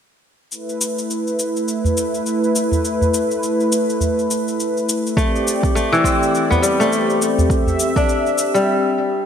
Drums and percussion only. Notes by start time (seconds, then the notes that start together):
0.52 cabasa
0.69 cabasa
0.81 cabasa
0.98 cabasa
1.10 cabasa
1.27 cabasa
1.39 cabasa
1.57 cabasa
1.68 cabasa
1.85 udu, cabasa
1.97 cabasa
2.14 cabasa
2.26 cabasa
2.44 cabasa
2.55 cabasa
2.72 udu, cabasa
2.85 cabasa
3.01 udu, cabasa
3.14 cabasa
3.31 cabasa
3.43 cabasa
3.60 cabasa
3.72 cabasa
3.90 cabasa
4.01 udu, cabasa
4.19 cabasa
4.31 cabasa
4.48 cabasa
4.60 cabasa
4.77 cabasa
4.89 cabasa
5.07 cabasa
5.17 kick, cabasa
5.36 cabasa
5.47 cabasa
5.63 kick, cabasa
5.77 cabasa
5.94 cabasa
6.04 kick, cabasa
6.23 cabasa
6.35 cabasa
6.51 udu, cabasa
6.63 cabasa
6.81 cabasa
6.92 cabasa
7.10 cabasa
7.22 cabasa
7.38 udu, cabasa
7.50 kick, cabasa
7.67 udu, cabasa
7.79 cabasa
7.96 kick, cabasa
8.09 cabasa
8.26 cabasa
8.38 cabasa
8.55 cabasa